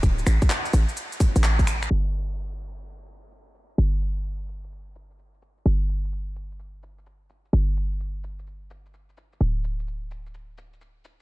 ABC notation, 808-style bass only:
X:1
M:4/4
L:1/16
Q:"Swing 16ths" 1/4=128
K:D
V:1 name="808-style bass" clef=bass
D,,,2 A,,, z3 A,,, z4 A,,,4- A,,, | G,,,16 | G,,,16 | G,,,16 |
G,,,16 | D,,,16 |]